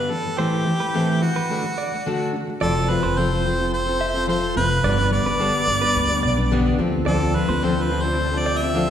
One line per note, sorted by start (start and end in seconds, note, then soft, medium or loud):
0.00 0.11 D3 medium
0.00 0.11 G3 medium
0.00 0.11 B3 medium
0.00 0.11 D4 medium
0.00 0.11 B4 medium
0.00 0.12 B4 medium
0.10 0.23 A2 soft
0.10 0.24 E3 soft
0.10 0.26 A3 soft
0.10 0.40 A4 medium
0.24 0.37 A2 soft
0.24 0.37 E3 soft
0.24 0.38 A3 soft
0.38 0.65 A2 medium
0.38 0.66 E3 medium
0.38 0.67 A3 medium
0.38 0.67 C4 medium
0.38 0.67 E4 medium
0.38 1.24 G4 medium
0.38 0.67 B4 medium
0.38 0.52 C5 medium
0.66 0.78 A2 medium
0.66 0.80 E3 medium
0.66 0.81 A3 medium
0.80 0.92 A2 soft
0.80 0.93 E3 soft
0.80 0.93 A3 soft
0.80 0.95 B4 medium
0.93 1.20 A2 medium
0.93 1.21 E3 medium
0.93 1.22 A3 medium
0.93 1.22 C4 medium
0.93 1.23 E4 medium
0.93 1.08 A4 medium
0.93 1.23 B4 medium
1.21 1.33 A2 soft
1.21 1.35 E3 soft
1.21 1.36 A3 medium
1.21 2.34 F#4 medium
1.34 1.49 A2 soft
1.34 1.49 E3 soft
1.34 1.49 A3 soft
1.34 1.63 B4 medium
1.49 1.62 D3 medium
1.49 1.64 A3 medium
1.49 1.64 D4 medium
1.49 1.64 F#4 medium
1.49 1.64 A4 medium
1.63 1.86 D3 soft
1.63 1.87 A3 soft
1.78 1.91 D5 medium
1.91 2.05 D3 soft
1.91 2.05 A3 soft
2.06 2.32 D3 medium
2.06 2.34 A3 medium
2.06 2.34 D4 medium
2.06 2.34 F#4 medium
2.06 2.34 A4 medium
2.33 2.46 D3 medium
2.33 2.49 A3 medium
2.47 2.61 D3 soft
2.47 2.60 A3 soft
2.61 2.96 F1 medium
2.61 2.75 F3 medium
2.61 2.75 C4 medium
2.61 2.75 F4 medium
2.61 2.74 A4 medium
2.61 2.91 A4 medium
2.61 2.75 D5 loud
2.75 2.88 C4 soft
2.75 2.89 F4 soft
2.75 2.89 A4 soft
2.88 3.03 F3 medium
2.88 3.03 C4 medium
2.88 3.03 F4 medium
2.88 3.01 A4 medium
2.88 3.19 B4 medium
3.02 4.52 F1 medium
3.02 3.16 C4 soft
3.02 3.17 F4 soft
3.02 3.17 A4 soft
3.02 3.42 C5 medium
3.17 3.31 F3 medium
3.17 3.31 C4 medium
3.17 3.31 F4 medium
3.17 3.30 A4 medium
3.17 3.73 C5 medium
3.31 3.44 C4 soft
3.31 3.45 F4 soft
3.31 3.45 A4 soft
3.44 3.59 F3 medium
3.44 3.59 C4 medium
3.44 3.59 F4 medium
3.44 3.57 A4 medium
3.58 3.87 C4 soft
3.58 3.86 F4 soft
3.58 3.85 A4 soft
3.73 4.25 C5 medium
3.86 4.15 C4 soft
3.86 4.14 F4 soft
3.86 4.13 A4 soft
4.01 4.14 E5 medium
4.14 4.27 C4 soft
4.14 4.27 F4 soft
4.14 4.28 A4 soft
4.27 4.54 F3 medium
4.27 4.55 C4 medium
4.27 4.56 F4 medium
4.27 4.57 A4 medium
4.27 4.55 C5 medium
4.55 4.79 F1 medium
4.55 4.84 F3 soft
4.55 4.84 C4 medium
4.55 4.84 F4 medium
4.55 4.85 A4 medium
4.55 5.08 B4 medium
4.83 5.18 G1 loud
4.83 4.98 G2 medium
4.83 4.98 D3 medium
4.83 4.98 G3 medium
4.83 4.98 B3 medium
4.83 4.97 D4 medium
4.83 4.96 B4 medium
4.83 4.97 D5 loud
4.97 5.10 G3 soft
4.97 5.11 B3 soft
4.97 5.11 D4 soft
4.97 5.12 B4 soft
5.11 5.25 G3 medium
5.11 5.26 B3 medium
5.11 5.25 D4 medium
5.11 5.24 B4 medium
5.11 6.75 D5 loud
5.25 5.49 G1 medium
5.25 5.39 G3 soft
5.25 5.40 B3 soft
5.25 5.40 D4 soft
5.25 5.39 B4 soft
5.25 5.39 B4 medium
5.39 5.67 G2 medium
5.39 5.68 D3 medium
5.39 5.66 G3 medium
5.39 5.67 B3 medium
5.39 5.68 D4 medium
5.39 5.53 A4 medium
5.39 5.69 B4 medium
5.67 5.97 G1 medium
5.67 5.81 G3 medium
5.67 5.82 B3 medium
5.67 5.81 D4 medium
5.67 5.80 B4 medium
5.81 6.10 G3 medium
5.81 6.09 B3 medium
5.81 6.09 D4 medium
5.81 6.07 B4 medium
5.81 6.08 B4 medium
5.96 6.18 D2 medium
6.09 6.38 G3 soft
6.09 6.37 B3 soft
6.09 6.36 D4 soft
6.09 6.35 B4 medium
6.23 6.69 B1 medium
6.23 6.36 D5 medium
6.37 6.51 G3 soft
6.37 6.51 B3 soft
6.37 6.51 D4 medium
6.37 6.51 B4 medium
6.51 6.79 G2 medium
6.51 6.79 D3 medium
6.51 6.78 G3 medium
6.51 6.79 B3 loud
6.51 6.80 D4 loud
6.51 6.80 B4 medium
6.79 7.36 D2 medium
6.79 7.06 F3 medium
6.79 7.07 C4 medium
6.79 7.07 F4 medium
6.79 7.08 A4 medium
7.06 8.90 C3 medium
7.06 7.21 D3 medium
7.06 8.90 F3 medium
7.06 7.21 F3 medium
7.06 8.90 A3 medium
7.06 7.21 C4 medium
7.06 8.90 D4 medium
7.06 7.20 F4 medium
7.06 7.37 A4 medium
7.06 7.19 A4 medium
7.06 7.20 D5 loud
7.20 7.34 C4 soft
7.20 7.34 F4 soft
7.20 7.34 A4 medium
7.34 7.48 F3 medium
7.34 7.49 C4 medium
7.34 7.49 F4 medium
7.34 7.47 A4 medium
7.34 7.65 B4 medium
7.48 8.90 D2 medium
7.48 7.62 C4 soft
7.48 7.62 F4 soft
7.48 7.62 A4 soft
7.48 7.88 C5 medium
7.62 7.76 D3 medium
7.62 7.77 F3 medium
7.62 7.77 C4 medium
7.62 7.76 F4 medium
7.62 7.74 A4 medium
7.62 7.84 C5 medium
7.76 7.90 C4 soft
7.76 7.90 F4 soft
7.76 7.90 A4 soft
7.82 8.03 B4 medium
7.90 8.04 F3 medium
7.90 8.05 C4 medium
7.90 8.04 F4 medium
7.90 8.02 A4 medium
8.01 8.32 F4 soft
8.01 8.30 A4 soft
8.01 8.40 C5 medium
8.06 8.33 C4 soft
8.31 8.61 C4 soft
8.31 8.60 F4 soft
8.31 8.59 A4 medium
8.39 8.59 D5 medium
8.46 8.59 D5 medium
8.57 8.74 F4 soft
8.57 8.74 A4 soft
8.57 8.90 E5 medium
8.62 8.74 C4 soft
8.74 8.90 D3 medium
8.74 8.90 F3 medium
8.74 8.90 C4 medium
8.74 8.90 F4 medium
8.74 8.90 A4 medium